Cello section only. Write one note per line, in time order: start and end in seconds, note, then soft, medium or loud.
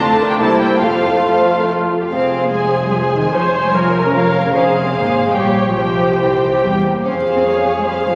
0.00 0.41 D2 medium
0.41 0.83 C2 soft
0.83 1.88 F2 soft
2.11 2.40 C4 medium
2.42 2.52 A#3 medium
2.52 2.82 G#3 medium
2.83 2.93 G3 medium
2.92 3.00 F3 medium
3.14 3.33 D#3 medium
3.33 3.42 F3 medium
3.64 3.74 G3 medium
3.74 4.04 F3 medium
4.05 4.14 C#3 medium
4.14 4.22 F3 medium
4.46 4.49 C#3 medium
4.54 4.62 C#4 medium
4.85 4.94 C4 medium
4.93 5.24 A#3 medium
5.26 5.36 G#3 medium
5.35 5.66 G3 medium
5.67 5.76 F3 medium
5.77 6.19 F3 medium
6.20 6.62 E3 soft
6.62 6.83 G3 medium
6.83 7.04 A#3 medium
7.04 7.12 C#4 medium
7.36 7.40 C4 soft
7.45 7.53 A#3 medium
7.77 7.86 G#3 medium
7.86 7.94 G3 medium
8.06 8.14 F3 medium